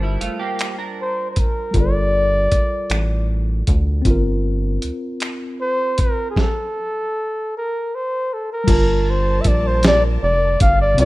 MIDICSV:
0, 0, Header, 1, 7, 480
1, 0, Start_track
1, 0, Key_signature, -2, "minor"
1, 0, Tempo, 769231
1, 1092, Time_signature, 6, 3, 24, 8
1, 6896, End_track
2, 0, Start_track
2, 0, Title_t, "Flugelhorn"
2, 0, Program_c, 0, 56
2, 634, Note_on_c, 0, 72, 84
2, 806, Note_off_c, 0, 72, 0
2, 819, Note_on_c, 0, 72, 54
2, 872, Note_on_c, 0, 70, 78
2, 881, Note_off_c, 0, 72, 0
2, 1109, Note_on_c, 0, 74, 106
2, 1119, Note_off_c, 0, 70, 0
2, 2061, Note_off_c, 0, 74, 0
2, 3503, Note_on_c, 0, 72, 100
2, 3748, Note_on_c, 0, 70, 82
2, 3757, Note_off_c, 0, 72, 0
2, 3931, Note_off_c, 0, 70, 0
2, 3934, Note_on_c, 0, 68, 63
2, 3990, Note_on_c, 0, 69, 84
2, 3999, Note_off_c, 0, 68, 0
2, 4701, Note_off_c, 0, 69, 0
2, 4727, Note_on_c, 0, 70, 85
2, 4959, Note_on_c, 0, 72, 78
2, 4969, Note_off_c, 0, 70, 0
2, 5200, Note_on_c, 0, 69, 68
2, 5209, Note_off_c, 0, 72, 0
2, 5306, Note_off_c, 0, 69, 0
2, 5321, Note_on_c, 0, 70, 83
2, 5678, Note_on_c, 0, 72, 82
2, 5688, Note_off_c, 0, 70, 0
2, 5873, Note_on_c, 0, 76, 69
2, 5883, Note_off_c, 0, 72, 0
2, 5915, Note_on_c, 0, 74, 94
2, 5925, Note_off_c, 0, 76, 0
2, 6034, Note_on_c, 0, 72, 89
2, 6044, Note_off_c, 0, 74, 0
2, 6143, Note_off_c, 0, 72, 0
2, 6161, Note_on_c, 0, 74, 107
2, 6261, Note_off_c, 0, 74, 0
2, 6389, Note_on_c, 0, 74, 102
2, 6604, Note_off_c, 0, 74, 0
2, 6626, Note_on_c, 0, 77, 100
2, 6731, Note_off_c, 0, 77, 0
2, 6748, Note_on_c, 0, 74, 103
2, 6852, Note_off_c, 0, 74, 0
2, 6867, Note_on_c, 0, 74, 113
2, 6896, Note_off_c, 0, 74, 0
2, 6896, End_track
3, 0, Start_track
3, 0, Title_t, "Tine electric piano"
3, 0, Program_c, 1, 4
3, 0, Control_c, 1, 64, 127
3, 0, Note_on_c, 1, 55, 60
3, 0, Note_on_c, 1, 65, 57
3, 0, Note_on_c, 1, 70, 50
3, 0, Note_on_c, 1, 72, 65
3, 0, Note_on_c, 1, 81, 54
3, 1054, Note_off_c, 1, 55, 0
3, 1062, Note_off_c, 1, 65, 0
3, 1068, Note_on_c, 1, 55, 48
3, 1069, Note_off_c, 1, 81, 0
3, 1075, Note_off_c, 1, 70, 0
3, 1083, Note_off_c, 1, 72, 0
3, 1084, Note_on_c, 1, 65, 51
3, 1098, Note_on_c, 1, 69, 48
3, 1109, Note_on_c, 1, 70, 49
3, 1124, Note_on_c, 1, 74, 53
3, 2495, Note_off_c, 1, 55, 0
3, 2503, Note_off_c, 1, 65, 0
3, 2506, Note_on_c, 1, 60, 60
3, 2510, Note_off_c, 1, 69, 0
3, 2515, Note_off_c, 1, 70, 0
3, 2523, Note_off_c, 1, 74, 0
3, 2536, Note_on_c, 1, 65, 60
3, 2540, Control_c, 1, 64, 0
3, 2563, Note_on_c, 1, 70, 73
3, 2643, Control_c, 1, 64, 127
3, 3934, Note_off_c, 1, 60, 0
3, 3949, Note_off_c, 1, 65, 0
3, 3962, Note_off_c, 1, 70, 0
3, 3981, Control_c, 1, 64, 0
3, 5391, Note_on_c, 1, 55, 59
3, 5411, Note_on_c, 1, 65, 60
3, 5429, Note_on_c, 1, 81, 54
3, 5450, Note_on_c, 1, 70, 61
3, 5528, Control_c, 1, 64, 127
3, 6817, Note_off_c, 1, 55, 0
3, 6827, Note_off_c, 1, 65, 0
3, 6828, Note_on_c, 1, 48, 58
3, 6836, Note_off_c, 1, 81, 0
3, 6846, Note_off_c, 1, 70, 0
3, 6847, Note_on_c, 1, 60, 59
3, 6860, Control_c, 1, 64, 0
3, 6867, Note_on_c, 1, 65, 57
3, 6896, Note_off_c, 1, 48, 0
3, 6896, Note_off_c, 1, 60, 0
3, 6896, Note_off_c, 1, 65, 0
3, 6896, End_track
4, 0, Start_track
4, 0, Title_t, "Clean electric guitar"
4, 0, Program_c, 2, 27
4, 15, Note_on_c, 2, 55, 54
4, 20, Note_on_c, 2, 64, 57
4, 128, Note_off_c, 2, 55, 0
4, 128, Note_off_c, 2, 64, 0
4, 130, Note_on_c, 2, 65, 72
4, 133, Note_on_c, 2, 57, 59
4, 245, Note_off_c, 2, 65, 0
4, 246, Note_on_c, 2, 67, 72
4, 247, Note_off_c, 2, 57, 0
4, 252, Note_on_c, 2, 58, 62
4, 477, Note_off_c, 2, 67, 0
4, 480, Note_off_c, 2, 58, 0
4, 489, Note_on_c, 2, 62, 50
4, 491, Note_on_c, 2, 70, 51
4, 1185, Note_off_c, 2, 70, 0
4, 1186, Note_off_c, 2, 62, 0
4, 6896, End_track
5, 0, Start_track
5, 0, Title_t, "String section"
5, 0, Program_c, 3, 48
5, 5426, Note_on_c, 3, 55, 77
5, 5427, Note_on_c, 3, 70, 83
5, 5428, Note_on_c, 3, 81, 74
5, 5431, Note_on_c, 3, 65, 68
5, 6845, Note_off_c, 3, 55, 0
5, 6845, Note_off_c, 3, 70, 0
5, 6846, Note_off_c, 3, 81, 0
5, 6863, Note_on_c, 3, 48, 78
5, 6867, Note_on_c, 3, 58, 75
5, 6896, Note_off_c, 3, 48, 0
5, 6896, Note_off_c, 3, 58, 0
5, 6896, Note_off_c, 3, 65, 0
5, 6896, End_track
6, 0, Start_track
6, 0, Title_t, "Analog synth bass"
6, 0, Program_c, 4, 38
6, 0, Note_on_c, 4, 31, 96
6, 109, Note_off_c, 4, 31, 0
6, 133, Note_on_c, 4, 31, 44
6, 181, Note_off_c, 4, 31, 0
6, 1094, Note_on_c, 4, 31, 99
6, 1548, Note_off_c, 4, 31, 0
6, 1577, Note_on_c, 4, 33, 46
6, 1623, Note_off_c, 4, 33, 0
6, 1811, Note_on_c, 4, 33, 100
6, 2267, Note_off_c, 4, 33, 0
6, 2299, Note_on_c, 4, 38, 91
6, 2512, Note_off_c, 4, 38, 0
6, 2535, Note_on_c, 4, 31, 99
6, 2989, Note_off_c, 4, 31, 0
6, 3023, Note_on_c, 4, 38, 42
6, 3068, Note_off_c, 4, 38, 0
6, 5420, Note_on_c, 4, 31, 104
6, 5871, Note_off_c, 4, 31, 0
6, 5903, Note_on_c, 4, 34, 82
6, 6353, Note_off_c, 4, 34, 0
6, 6384, Note_on_c, 4, 29, 90
6, 6595, Note_off_c, 4, 29, 0
6, 6623, Note_on_c, 4, 31, 95
6, 6834, Note_off_c, 4, 31, 0
6, 6857, Note_on_c, 4, 36, 113
6, 6896, Note_off_c, 4, 36, 0
6, 6896, End_track
7, 0, Start_track
7, 0, Title_t, "Drums"
7, 133, Note_on_c, 9, 42, 66
7, 195, Note_off_c, 9, 42, 0
7, 369, Note_on_c, 9, 42, 62
7, 379, Note_on_c, 9, 26, 92
7, 431, Note_off_c, 9, 42, 0
7, 441, Note_off_c, 9, 26, 0
7, 850, Note_on_c, 9, 42, 70
7, 854, Note_on_c, 9, 36, 83
7, 912, Note_off_c, 9, 42, 0
7, 916, Note_off_c, 9, 36, 0
7, 1086, Note_on_c, 9, 42, 58
7, 1088, Note_on_c, 9, 36, 89
7, 1148, Note_off_c, 9, 42, 0
7, 1150, Note_off_c, 9, 36, 0
7, 1570, Note_on_c, 9, 42, 66
7, 1572, Note_on_c, 9, 36, 81
7, 1632, Note_off_c, 9, 42, 0
7, 1634, Note_off_c, 9, 36, 0
7, 1808, Note_on_c, 9, 42, 60
7, 1818, Note_on_c, 9, 26, 91
7, 1871, Note_off_c, 9, 42, 0
7, 1881, Note_off_c, 9, 26, 0
7, 2291, Note_on_c, 9, 42, 67
7, 2295, Note_on_c, 9, 36, 84
7, 2354, Note_off_c, 9, 42, 0
7, 2357, Note_off_c, 9, 36, 0
7, 2528, Note_on_c, 9, 36, 97
7, 2528, Note_on_c, 9, 42, 65
7, 2590, Note_off_c, 9, 42, 0
7, 2591, Note_off_c, 9, 36, 0
7, 3008, Note_on_c, 9, 42, 67
7, 3071, Note_off_c, 9, 42, 0
7, 3247, Note_on_c, 9, 42, 61
7, 3257, Note_on_c, 9, 26, 86
7, 3309, Note_off_c, 9, 42, 0
7, 3319, Note_off_c, 9, 26, 0
7, 3730, Note_on_c, 9, 42, 73
7, 3736, Note_on_c, 9, 36, 80
7, 3793, Note_off_c, 9, 42, 0
7, 3798, Note_off_c, 9, 36, 0
7, 3971, Note_on_c, 9, 36, 86
7, 3977, Note_on_c, 9, 38, 72
7, 4034, Note_off_c, 9, 36, 0
7, 4039, Note_off_c, 9, 38, 0
7, 5414, Note_on_c, 9, 36, 104
7, 5415, Note_on_c, 9, 42, 74
7, 5415, Note_on_c, 9, 49, 98
7, 5476, Note_off_c, 9, 36, 0
7, 5477, Note_off_c, 9, 42, 0
7, 5477, Note_off_c, 9, 49, 0
7, 5893, Note_on_c, 9, 42, 72
7, 5897, Note_on_c, 9, 36, 91
7, 5955, Note_off_c, 9, 42, 0
7, 5959, Note_off_c, 9, 36, 0
7, 6133, Note_on_c, 9, 42, 73
7, 6143, Note_on_c, 9, 38, 113
7, 6196, Note_off_c, 9, 42, 0
7, 6206, Note_off_c, 9, 38, 0
7, 6616, Note_on_c, 9, 42, 78
7, 6619, Note_on_c, 9, 36, 105
7, 6678, Note_off_c, 9, 42, 0
7, 6681, Note_off_c, 9, 36, 0
7, 6852, Note_on_c, 9, 42, 77
7, 6896, Note_off_c, 9, 42, 0
7, 6896, End_track
0, 0, End_of_file